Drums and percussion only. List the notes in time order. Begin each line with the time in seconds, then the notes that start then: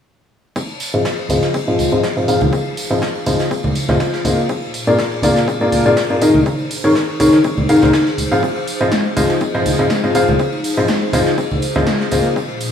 0.56 kick, ride, tambourine
0.69 tambourine
0.80 open hi-hat, ride, tambourine
0.93 tambourine
1.05 kick, snare, ride, tambourine
1.18 tambourine
1.29 open hi-hat, ride, tambourine, high conga
1.42 snare, tambourine
1.54 kick, ride, tambourine
1.67 tambourine
1.79 open hi-hat, ride, tambourine, high conga
1.92 tambourine
2.03 kick, snare, ride, tambourine
2.17 tambourine
2.28 open hi-hat, ride, tambourine
2.41 ride, tambourine, high conga
2.52 kick, ride, tambourine
2.65 tambourine
2.77 open hi-hat, tambourine
2.91 tambourine
3.02 kick, snare, ride, tambourine
3.15 tambourine
3.26 open hi-hat, ride, tambourine, high conga
3.39 snare, tambourine
3.51 kick, ride, tambourine
3.64 tambourine, high conga
3.75 open hi-hat, ride, tambourine
3.88 snare, tambourine, high conga
4.00 kick, snare, ride, tambourine
4.14 snare, tambourine
4.25 open hi-hat, ride, tambourine, high conga
4.39 tambourine
4.49 kick, ride, tambourine
4.62 tambourine
4.74 open hi-hat, ride, tambourine
4.87 tambourine
4.99 kick, snare, ride, tambourine
5.12 tambourine
5.22 open hi-hat, ride, tambourine, high conga
5.36 snare, tambourine
5.48 kick, ride, tambourine
5.60 tambourine
5.72 open hi-hat, ride, tambourine, high conga
5.86 tambourine
5.97 kick, snare, ride, tambourine
6.11 tambourine
6.22 open hi-hat, ride, tambourine
6.34 ride, tambourine, high conga
6.45 kick, ride, tambourine
6.59 tambourine
6.71 open hi-hat, tambourine
6.84 tambourine
6.95 kick, snare, ride, tambourine
7.09 tambourine
7.19 open hi-hat, ride, tambourine, high conga
7.33 snare, tambourine
7.44 kick, ride, tambourine
7.58 tambourine, high conga
7.69 open hi-hat, ride, tambourine
7.82 snare, tambourine, high conga
7.93 kick, snare, ride, tambourine
8.06 snare, tambourine
8.18 open hi-hat, ride, tambourine, high conga
8.32 tambourine
8.43 kick, ride, tambourine
8.56 tambourine
8.68 open hi-hat, ride, tambourine
8.80 tambourine
8.92 kick, snare, ride, tambourine
9.05 tambourine
9.16 open hi-hat, ride, tambourine, high conga
9.30 snare, tambourine
9.40 kick, ride, tambourine
9.54 tambourine
9.66 open hi-hat, ride, tambourine, high conga
9.79 tambourine
9.90 kick, snare, ride, tambourine
10.04 tambourine
10.15 open hi-hat, ride, tambourine
10.28 ride, tambourine, high conga
10.39 kick, ride, tambourine
10.52 tambourine
10.64 open hi-hat, tambourine
10.78 tambourine
10.88 kick, snare, ride, tambourine
11.02 tambourine
11.13 open hi-hat, ride, tambourine, high conga
11.26 snare, tambourine
11.38 kick, ride, tambourine
11.51 tambourine, high conga
11.62 open hi-hat, ride, tambourine
11.76 snare, tambourine, high conga
11.87 kick, snare, ride, tambourine
12.00 snare, tambourine
12.11 open hi-hat, ride, tambourine, high conga
12.25 tambourine
12.36 kick, ride, tambourine
12.50 tambourine
12.60 open hi-hat, ride, tambourine